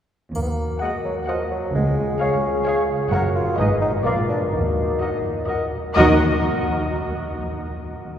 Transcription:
0.33 D#2 A#3 F#4 A#4, triangle
0.42 B3
0.49 A#3
0.80 G#3 F#4 A#4 D#5 F#5
1.05 F#3
1.27 F3 F#4 A#4 D#5 F#5
1.51 F#3
1.73 C#2 G#3 F4 G#4
2.21 C#4 G#4 C#5 F5
2.66 G#4 C#5 F5
3.12 F#1 F#2 F#4 A#4 C#5 F#5
3.36 F4
3.58 G#1 G#2 D#4 G#4 B4 D#5 G#5
3.82 D#4
4.05 A#1 A#2 A#3 F4 A#4 D5 F5
4.29 D4
4.53 D#2 D#3 D#4 F#4
5.00 F#4 A#4 D#5 F#5
5.48 F#4 A#4 D#5 F#5
5.95 D#2 D#3 A#3 D#4 F#4 A#4 D#5 F#5

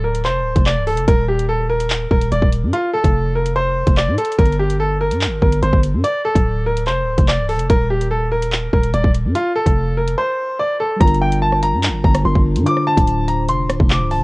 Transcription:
Already playing: D1
0.04 A#4
0.15 closed hi-hat
0.25 F1 C5, clap
0.40 D1
0.56 F1, kick, closed hi-hat
0.66 D5, clap
0.77 C1
0.87 A4, open hi-hat
0.92 F1
0.97 closed hi-hat
1.08 D#1 A#4, kick, closed hi-hat
1.28 G4
1.39 closed hi-hat
1.49 A4
1.70 A#4
1.80 closed hi-hat
1.90 clap
2.11 D#1 A#4, kick
2.21 closed hi-hat
2.32 D#1 D5, closed hi-hat
2.42 D#1, kick
2.52 closed hi-hat
2.63 G2
2.73 F4, closed hi-hat
2.94 A4
3.04 F1, kick, closed hi-hat
3.35 A#4
3.46 closed hi-hat
3.56 C5
3.87 F1, kick, closed hi-hat
3.97 D5, clap
4.08 A2
4.18 A4, closed hi-hat
4.25 closed hi-hat
4.32 closed hi-hat
4.39 G1 A#4, kick, closed hi-hat
4.46 closed hi-hat
4.52 closed hi-hat
4.59 G4
4.70 closed hi-hat
4.80 A4
5.01 A#4
5.11 G2, closed hi-hat
5.21 clap
5.27 G1
5.42 G1 A#4, kick
5.52 closed hi-hat
5.63 G1 C5, closed hi-hat
5.73 G1, kick
5.83 closed hi-hat
5.94 G2
6.04 D5, closed hi-hat
6.25 A4
6.35 D1, kick, closed hi-hat
6.66 A#4
6.77 closed hi-hat
6.87 F1 C5, clap
7.02 D1
7.18 F1, kick, closed hi-hat
7.28 D5, clap
7.39 C1
7.49 A4, open hi-hat
7.54 F1
7.59 closed hi-hat
7.70 D#1 A#4, kick, closed hi-hat
7.90 G4
8.01 closed hi-hat
8.11 A4
8.32 A#4
8.42 closed hi-hat
8.52 clap
8.73 D#1 A#4, kick
8.83 closed hi-hat
8.94 D#1 D5, closed hi-hat
9.04 D#1, kick
9.14 closed hi-hat
9.25 G2
9.35 F4, closed hi-hat
9.56 A4
9.66 F1, kick, closed hi-hat
9.97 A#4
10.08 closed hi-hat
10.18 C5
10.59 D5
10.80 A4
10.96 G3 D4
11.01 G1 F4 A#5, kick, closed hi-hat
11.05 A#4, closed hi-hat
11.14 closed hi-hat
11.22 G5
11.32 closed hi-hat
11.42 A5
11.52 cross-stick
11.63 A#5, closed hi-hat
11.73 G2
11.83 clap, closed hi-hat
11.89 G1
12.04 G1 A#5, kick
12.14 cross-stick, closed hi-hat
12.23 G1 G3 D4 F4 C6
12.27 A#4
12.35 G1, kick
12.56 G2, closed hi-hat
12.62 D3 D4
12.66 F4 D6, closed hi-hat
12.71 C5
12.77 cross-stick
12.87 A5
12.97 D1, kick, closed hi-hat
13.07 closed hi-hat
13.28 A#5, closed hi-hat
13.49 F1 C6, closed hi-hat
13.64 D1
13.70 cross-stick, closed hi-hat
13.80 F1, kick
13.90 D6, clap
14.01 C1
14.11 A5, open hi-hat
14.16 F1

